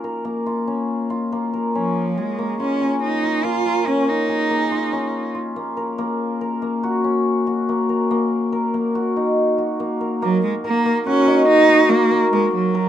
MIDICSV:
0, 0, Header, 1, 3, 480
1, 0, Start_track
1, 0, Key_signature, -6, "minor"
1, 0, Tempo, 423430
1, 1980, Time_signature, 5, 2, 24, 8
1, 14611, End_track
2, 0, Start_track
2, 0, Title_t, "Hammered dulcimer"
2, 0, Program_c, 0, 15
2, 0, Note_on_c, 0, 58, 66
2, 0, Note_on_c, 0, 61, 60
2, 0, Note_on_c, 0, 65, 55
2, 44, Note_on_c, 0, 70, 59
2, 275, Note_off_c, 0, 58, 0
2, 280, Note_on_c, 0, 58, 60
2, 521, Note_off_c, 0, 65, 0
2, 525, Note_on_c, 0, 65, 59
2, 760, Note_off_c, 0, 61, 0
2, 765, Note_on_c, 0, 61, 54
2, 1242, Note_off_c, 0, 65, 0
2, 1247, Note_on_c, 0, 65, 61
2, 1496, Note_off_c, 0, 58, 0
2, 1500, Note_on_c, 0, 58, 64
2, 1734, Note_off_c, 0, 70, 0
2, 1739, Note_on_c, 0, 70, 57
2, 1982, Note_off_c, 0, 61, 0
2, 1987, Note_on_c, 0, 61, 64
2, 2466, Note_on_c, 0, 68, 59
2, 2699, Note_off_c, 0, 58, 0
2, 2704, Note_on_c, 0, 58, 62
2, 2940, Note_off_c, 0, 65, 0
2, 2945, Note_on_c, 0, 65, 58
2, 3182, Note_off_c, 0, 61, 0
2, 3186, Note_on_c, 0, 61, 58
2, 3661, Note_off_c, 0, 65, 0
2, 3665, Note_on_c, 0, 65, 55
2, 3897, Note_off_c, 0, 58, 0
2, 3902, Note_on_c, 0, 58, 67
2, 4135, Note_off_c, 0, 70, 0
2, 4140, Note_on_c, 0, 70, 54
2, 4379, Note_off_c, 0, 61, 0
2, 4384, Note_on_c, 0, 61, 66
2, 4858, Note_off_c, 0, 68, 0
2, 4863, Note_on_c, 0, 68, 57
2, 5100, Note_off_c, 0, 58, 0
2, 5104, Note_on_c, 0, 58, 60
2, 5339, Note_off_c, 0, 65, 0
2, 5343, Note_on_c, 0, 65, 63
2, 5581, Note_off_c, 0, 61, 0
2, 5586, Note_on_c, 0, 61, 57
2, 6056, Note_off_c, 0, 65, 0
2, 6061, Note_on_c, 0, 65, 55
2, 6299, Note_off_c, 0, 58, 0
2, 6304, Note_on_c, 0, 58, 62
2, 6534, Note_off_c, 0, 70, 0
2, 6539, Note_on_c, 0, 70, 60
2, 6778, Note_off_c, 0, 58, 0
2, 6783, Note_on_c, 0, 58, 75
2, 7261, Note_off_c, 0, 70, 0
2, 7266, Note_on_c, 0, 70, 61
2, 7500, Note_off_c, 0, 58, 0
2, 7504, Note_on_c, 0, 58, 58
2, 7747, Note_on_c, 0, 66, 70
2, 7815, Note_off_c, 0, 65, 0
2, 7978, Note_off_c, 0, 61, 0
2, 7983, Note_on_c, 0, 61, 55
2, 8299, Note_off_c, 0, 68, 0
2, 8461, Note_off_c, 0, 66, 0
2, 8465, Note_on_c, 0, 66, 59
2, 8710, Note_off_c, 0, 58, 0
2, 8715, Note_on_c, 0, 58, 63
2, 8942, Note_off_c, 0, 70, 0
2, 8946, Note_on_c, 0, 70, 60
2, 9185, Note_off_c, 0, 58, 0
2, 9189, Note_on_c, 0, 58, 70
2, 9658, Note_off_c, 0, 70, 0
2, 9663, Note_on_c, 0, 70, 66
2, 9902, Note_off_c, 0, 58, 0
2, 9907, Note_on_c, 0, 58, 59
2, 10142, Note_off_c, 0, 66, 0
2, 10146, Note_on_c, 0, 66, 60
2, 10388, Note_on_c, 0, 63, 55
2, 10857, Note_off_c, 0, 66, 0
2, 10861, Note_on_c, 0, 66, 54
2, 11102, Note_off_c, 0, 58, 0
2, 11106, Note_on_c, 0, 58, 60
2, 11339, Note_off_c, 0, 70, 0
2, 11344, Note_on_c, 0, 70, 52
2, 11583, Note_off_c, 0, 58, 0
2, 11588, Note_on_c, 0, 58, 80
2, 12059, Note_off_c, 0, 70, 0
2, 12064, Note_on_c, 0, 70, 68
2, 12300, Note_off_c, 0, 58, 0
2, 12304, Note_on_c, 0, 58, 70
2, 12362, Note_off_c, 0, 61, 0
2, 12539, Note_off_c, 0, 66, 0
2, 12543, Note_on_c, 0, 66, 73
2, 12774, Note_off_c, 0, 63, 0
2, 12778, Note_on_c, 0, 63, 65
2, 13247, Note_off_c, 0, 66, 0
2, 13251, Note_on_c, 0, 66, 70
2, 13489, Note_off_c, 0, 58, 0
2, 13494, Note_on_c, 0, 58, 70
2, 13725, Note_off_c, 0, 70, 0
2, 13730, Note_on_c, 0, 70, 76
2, 13971, Note_off_c, 0, 58, 0
2, 13975, Note_on_c, 0, 58, 79
2, 14442, Note_off_c, 0, 70, 0
2, 14447, Note_on_c, 0, 70, 72
2, 14611, Note_off_c, 0, 58, 0
2, 14611, Note_off_c, 0, 63, 0
2, 14611, Note_off_c, 0, 66, 0
2, 14611, Note_off_c, 0, 70, 0
2, 14611, End_track
3, 0, Start_track
3, 0, Title_t, "Cello"
3, 0, Program_c, 1, 42
3, 1976, Note_on_c, 1, 53, 65
3, 2465, Note_on_c, 1, 56, 70
3, 2482, Note_off_c, 1, 53, 0
3, 2945, Note_off_c, 1, 56, 0
3, 2955, Note_on_c, 1, 61, 75
3, 3397, Note_off_c, 1, 61, 0
3, 3432, Note_on_c, 1, 63, 84
3, 3905, Note_on_c, 1, 65, 89
3, 3922, Note_off_c, 1, 63, 0
3, 4393, Note_on_c, 1, 61, 82
3, 4410, Note_off_c, 1, 65, 0
3, 4634, Note_on_c, 1, 63, 83
3, 4651, Note_off_c, 1, 61, 0
3, 6072, Note_off_c, 1, 63, 0
3, 11590, Note_on_c, 1, 54, 78
3, 11810, Note_off_c, 1, 54, 0
3, 11830, Note_on_c, 1, 56, 80
3, 11936, Note_off_c, 1, 56, 0
3, 12078, Note_on_c, 1, 58, 87
3, 12516, Note_off_c, 1, 58, 0
3, 12560, Note_on_c, 1, 61, 88
3, 12996, Note_off_c, 1, 61, 0
3, 13016, Note_on_c, 1, 63, 107
3, 13485, Note_on_c, 1, 58, 100
3, 13502, Note_off_c, 1, 63, 0
3, 13969, Note_off_c, 1, 58, 0
3, 13976, Note_on_c, 1, 56, 84
3, 14198, Note_off_c, 1, 56, 0
3, 14219, Note_on_c, 1, 54, 86
3, 14611, Note_off_c, 1, 54, 0
3, 14611, End_track
0, 0, End_of_file